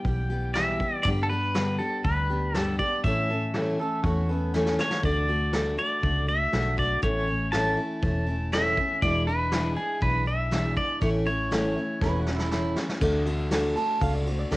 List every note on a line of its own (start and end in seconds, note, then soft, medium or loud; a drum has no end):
0.00 0.50 G5 loud
0.04 0.77 B1 medium
0.04 0.30 E3 medium
0.04 0.30 G3 medium
0.04 0.30 B3 medium
0.04 0.29 G4 medium
0.04 kick medium
0.04 open hi-hat soft
0.30 0.55 E3 soft
0.30 0.55 G3 soft
0.30 0.56 B3 medium
0.30 0.55 G4 medium
0.54 0.80 E2 medium
0.54 0.80 B2 medium
0.54 0.80 E3 medium
0.54 0.81 G3 medium
0.54 0.80 B3 medium
0.54 0.78 G4 medium
0.54 1.06 E5 medium
0.54 snare loud
0.79 1.06 E3 soft
0.79 1.05 G3 soft
0.79 1.05 B3 soft
0.79 1.05 G4 soft
0.79 kick medium
1.03 1.77 G2 medium
1.03 1.30 G2 medium
1.03 1.30 D3 medium
1.03 1.30 G3 medium
1.03 1.31 B3 medium
1.03 1.30 D4 medium
1.03 1.08 D5 loud
1.03 kick loud
1.03 open hi-hat medium
1.07 1.28 G4 loud
1.23 1.30 A4 medium
1.30 1.54 G3 soft
1.30 1.55 B3 soft
1.30 1.55 D4 medium
1.30 1.55 G4 medium
1.30 1.81 B4 loud
1.54 1.80 G2 medium
1.54 1.80 D3 medium
1.54 1.80 G3 medium
1.54 1.80 B3 medium
1.54 1.79 D4 medium
1.54 1.78 G4 medium
1.54 snare loud
1.54 open hi-hat medium
1.79 2.03 G3 soft
1.79 2.04 B3 soft
1.79 2.05 D4 soft
1.79 2.04 G4 medium
1.79 2.02 A4 medium
2.04 2.77 D2 medium
2.04 2.29 G3 medium
2.04 2.30 B3 medium
2.04 2.30 D4 medium
2.04 2.28 G4 medium
2.04 2.56 B4 medium
2.04 kick loud
2.04 open hi-hat soft
2.30 2.55 G3 soft
2.30 2.55 B3 soft
2.30 2.55 D4 soft
2.30 2.55 G4 medium
2.54 2.79 G2 medium
2.54 2.80 D3 medium
2.54 2.80 G3 medium
2.54 2.80 B3 medium
2.54 2.79 D4 medium
2.54 2.78 G4 medium
2.54 2.75 A4 medium
2.54 snare loud
2.54 open hi-hat soft
2.79 3.05 G3 soft
2.79 3.05 B3 soft
2.79 3.05 D4 medium
2.79 3.04 G4 medium
2.79 3.02 D5 loud
2.79 kick medium
3.04 3.77 A2 medium
3.04 3.29 A2 medium
3.04 3.30 E3 medium
3.04 3.30 A3 medium
3.04 3.30 C#4 medium
3.04 3.29 A4 medium
3.04 4.00 E5 medium
3.04 kick loud
3.04 open hi-hat medium
3.30 3.55 A3 soft
3.30 3.55 C#4 medium
3.30 3.55 A4 medium
3.54 3.79 A2 medium
3.54 3.80 E3 medium
3.54 3.80 A3 medium
3.54 3.80 C#4 medium
3.54 3.78 A4 loud
3.54 snare loud
3.54 open hi-hat medium
3.79 4.04 A3 medium
3.79 4.05 C#4 medium
3.79 4.04 A4 medium
3.79 4.03 A4 medium
4.03 4.76 E2 medium
4.03 4.29 E3 medium
4.03 4.30 A3 medium
4.03 4.30 C#4 medium
4.03 4.28 F#4 medium
4.03 kick medium
4.03 open hi-hat soft
4.07 4.28 A4 medium
4.29 4.54 A3 soft
4.29 4.53 B3 medium
4.29 4.54 C#4 medium
4.29 4.54 A4 medium
4.54 4.79 A2 medium
4.54 4.79 E3 medium
4.54 4.79 A3 loud
4.54 4.78 C#4 medium
4.54 4.80 C#4 medium
4.54 4.77 A4 loud
4.54 snare medium
4.66 snare medium
4.78 5.03 A3 soft
4.78 5.05 C#4 soft
4.78 5.04 A4 medium
4.78 5.05 C#5 medium
4.78 snare medium
4.90 snare medium
5.03 5.76 D2 medium
5.03 5.29 D3 medium
5.03 5.29 A3 medium
5.03 5.29 D4 medium
5.03 5.27 F#4 loud
5.03 5.77 D5 medium
5.03 kick loud
5.03 open hi-hat medium
5.28 5.53 A3 soft
5.28 5.54 D4 soft
5.28 5.53 F#4 medium
5.53 5.78 D3 medium
5.53 5.79 A3 medium
5.53 5.78 D4 medium
5.53 5.76 F#4 medium
5.53 snare loud
5.53 open hi-hat soft
5.77 6.02 A3 soft
5.77 6.03 D4 medium
5.77 6.03 F#4 medium
5.77 6.28 D5 loud
6.02 6.46 C#2 medium
6.02 6.28 D3 medium
6.02 6.28 A3 medium
6.02 6.27 D4 medium
6.02 6.25 F#4 medium
6.02 kick loud
6.02 open hi-hat soft
6.27 6.52 A3 soft
6.27 6.53 D4 soft
6.27 6.52 F#4 medium
6.27 6.79 E5 medium
6.52 6.96 B1 medium
6.52 6.78 D3 medium
6.52 6.78 A3 medium
6.52 6.77 D4 medium
6.52 6.76 F#4 medium
6.52 snare loud
6.52 open hi-hat soft
6.77 7.02 A3 soft
6.77 7.03 D4 soft
6.77 7.02 F#4 medium
6.77 7.03 D5 loud
6.77 kick medium
7.02 7.75 A1 medium
7.02 7.28 A2 medium
7.02 7.28 E3 medium
7.02 7.28 A3 loud
7.02 7.28 C#4 loud
7.02 7.26 E4 medium
7.02 7.55 C#5 medium
7.02 kick loud
7.02 open hi-hat soft
7.27 7.53 A3 soft
7.27 7.53 C#4 medium
7.27 7.53 E4 medium
7.52 7.78 A2 medium
7.52 7.78 E3 medium
7.52 7.78 A3 medium
7.52 7.77 C#4 medium
7.52 7.76 E4 loud
7.52 8.55 A5 loud
7.52 snare loud
7.52 open hi-hat soft
7.77 8.02 A3 soft
7.77 8.03 C#4 soft
7.77 8.02 E4 medium
8.02 8.75 E1 medium
8.02 8.27 E3 medium
8.02 8.28 A3 medium
8.02 8.27 C#4 medium
8.02 8.25 E4 medium
8.02 kick loud
8.02 open hi-hat soft
8.26 8.52 A3 soft
8.26 8.53 C#4 medium
8.26 8.52 E4 medium
8.52 8.77 A2 medium
8.52 8.78 E3 medium
8.52 8.78 A3 medium
8.52 8.77 C#4 medium
8.52 8.76 E4 medium
8.52 9.04 E5 medium
8.52 snare loud
8.52 open hi-hat soft
8.77 9.03 A3 soft
8.77 9.03 C#4 medium
8.77 9.02 E4 medium
8.77 kick medium
9.02 9.75 E1 medium
9.02 9.27 E2 medium
9.02 9.27 B2 medium
9.02 9.28 E3 loud
9.02 9.28 G#3 medium
9.02 9.27 D4 medium
9.02 9.26 E4 medium
9.02 9.28 D5 loud
9.02 kick loud
9.02 open hi-hat medium
9.27 9.52 E3 soft
9.27 9.52 G#3 soft
9.27 9.53 D4 medium
9.27 9.52 E4 medium
9.27 9.79 B4 loud
9.52 9.77 E2 medium
9.52 9.77 B2 medium
9.52 9.78 E3 medium
9.52 9.77 G#3 medium
9.52 9.77 D4 medium
9.52 9.75 E4 medium
9.52 snare loud
9.76 10.00 E3 medium
9.76 10.01 G#3 soft
9.76 10.02 D4 medium
9.76 10.02 E4 medium
9.76 10.03 G#4 medium
10.01 10.75 B1 loud
10.01 10.26 E3 medium
10.01 10.27 G#3 medium
10.01 10.26 D4 medium
10.01 10.25 E4 medium
10.01 10.26 B4 loud
10.01 kick loud
10.01 open hi-hat soft
10.26 10.51 E3 soft
10.26 10.51 G#3 soft
10.26 10.52 D4 medium
10.26 10.51 E4 soft
10.26 10.77 E5 loud
10.51 10.77 E2 medium
10.51 10.77 B2 medium
10.51 10.77 E3 medium
10.51 10.77 G#3 medium
10.51 10.76 D4 medium
10.51 10.75 E4 medium
10.51 snare loud
10.76 11.00 E3 soft
10.76 11.02 G#3 medium
10.76 11.02 D4 soft
10.76 11.01 E4 medium
10.76 11.02 D5 loud
10.76 kick medium
11.01 11.74 A1 medium
11.01 11.26 A2 medium
11.01 11.27 E3 medium
11.01 11.27 A3 medium
11.01 11.27 C#4 medium
11.01 11.25 E4 medium
11.01 11.09 C#5 medium
11.01 kick loud
11.01 open hi-hat medium
11.26 11.51 A3 soft
11.26 11.51 C#4 medium
11.26 11.51 E4 medium
11.26 12.23 C#5 medium
11.51 11.76 A2 medium
11.51 11.77 E3 medium
11.51 11.77 A3 medium
11.51 11.76 C#4 loud
11.51 11.74 E4 loud
11.51 snare loud
11.75 12.01 A3 soft
11.75 12.02 C#4 medium
11.75 12.01 E4 medium
12.01 12.74 E1 loud
12.01 12.26 E3 medium
12.01 12.27 A3 medium
12.01 12.27 C#4 medium
12.01 12.25 E4 medium
12.01 12.18 B4 loud
12.01 kick loud
12.01 snare medium
12.19 12.35 F#4 medium
12.26 12.52 A3 medium
12.26 12.53 C#4 medium
12.26 12.52 E4 medium
12.26 snare medium
12.35 12.50 E4 medium
12.39 snare medium
12.51 12.77 A2 medium
12.51 12.77 E3 medium
12.51 12.77 A3 medium
12.51 12.76 C#4 medium
12.51 12.75 E4 medium
12.51 12.75 E4 loud
12.51 snare medium
12.76 13.00 A3 soft
12.76 13.02 C#4 soft
12.76 13.01 E4 medium
12.76 snare medium
12.89 snare medium
13.01 13.74 D2 medium
13.01 13.26 D3 medium
13.01 13.26 A3 loud
13.01 13.26 D4 loud
13.01 13.24 F#4 medium
13.01 kick loud
13.01 crash loud
13.26 13.51 A3 medium
13.26 13.51 D4 medium
13.26 13.51 F#4 medium
13.26 ride medium
13.51 13.76 D3 loud
13.51 13.77 A3 loud
13.51 13.77 D4 loud
13.51 13.75 F#4 loud
13.51 snare loud
13.51 ride medium
13.76 14.02 D4 soft
13.76 14.01 F#4 medium
13.76 14.00 A5 loud
13.76 ride medium
13.80 14.01 A3 soft
14.00 14.44 C#2 medium
14.00 14.26 D3 medium
14.00 14.26 A3 medium
14.00 14.26 D4 medium
14.00 14.24 F#4 medium
14.00 14.14 F5 medium
14.00 kick loud
14.00 ride medium
14.14 14.27 D5 medium
14.26 14.50 A3 soft
14.26 14.51 D4 soft
14.26 14.51 F#4 medium
14.26 14.39 C5 medium
14.26 ride medium
14.39 14.53 D5 medium
14.51 14.57 D2 medium
14.51 14.57 D3 medium
14.51 14.57 A3 medium
14.51 14.57 D4 medium
14.51 14.57 F#4 medium
14.51 14.57 C5 medium
14.51 snare loud
14.51 ride medium